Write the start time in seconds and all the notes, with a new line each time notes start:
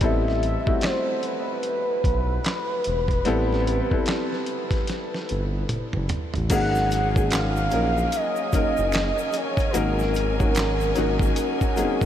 0.01 A1 G3 B3 C4 E4 A4 E5, kick, closed hi-hat
0.28 snare
0.43 closed hi-hat
0.65 B1 G3 A3 C4 E4 F#4, kick
0.81 C5, snare, clap, closed hi-hat
1.23 B4, closed hi-hat
1.63 closed hi-hat
2.04 B1, kick, closed hi-hat
2.44 snare, clap, closed hi-hat
2.84 E1, closed hi-hat
3.08 kick, closed hi-hat
3.25 A1 G3 B3 C4 E4 A4, closed hi-hat
3.53 snare
3.67 closed hi-hat
3.90 G1 G3 C4 E4 A4 B4, kick
4.06 snare, clap, closed hi-hat
4.32 snare
4.46 closed hi-hat
4.71 kick, snare, closed hi-hat
4.87 snare, closed hi-hat
5.14 snare
5.29 G1, closed hi-hat
5.69 F#1, closed hi-hat, mid tom
5.93 F#1, mid tom
6.09 closed hi-hat, floor tom
6.34 A1, closed hi-hat, floor tom
6.50 G#1 F#3 A#3 C#4 D#4 G#4 A#4 G#5, kick, closed hi-hat, crash, shaker
6.54 F#5
6.75 snare, shaker
6.91 F#5, closed hi-hat, shaker
7.14 F#3 A#3 C#4 D#4 G#4, kick, shaker
7.31 finger snap, snare, clap, closed hi-hat, shaker
7.35 F5
7.56 shaker
7.71 A#1 F#3 A#3 C#4 D#4 A#4, closed hi-hat, shaker
7.98 shaker
8.12 D#5, closed hi-hat, shaker
8.36 shaker
8.52 F#1 F#3 A#3 C#4 D#4 A#4, kick, closed hi-hat, shaker
8.77 F#1, shaker
8.92 finger snap, snare, clap, closed hi-hat, shaker
9.18 shaker
9.30 D#5, closed hi-hat, shaker
9.36 C#5
9.57 kick, closed hi-hat, shaker
9.70 F#3 A#3 B4, closed hi-hat
9.75 G#1 C#4 D#4 A#4, shaker
9.99 snare, shaker
10.14 closed hi-hat, shaker
10.39 F#3 A#3 C#4 D#4 F#4, kick, shaker
10.55 finger snap, snare, clap, closed hi-hat, shaker
10.81 shaker
10.95 G#1 F#3 A#3 C#4 D#4 F#4, closed hi-hat, shaker
11.19 kick, shaker
11.36 closed hi-hat, shaker
11.61 kick, shaker
11.76 F#1 F#3 A#3 C4 D#4 G#4, closed hi-hat, shaker
11.84 C#4
12.01 kick, shaker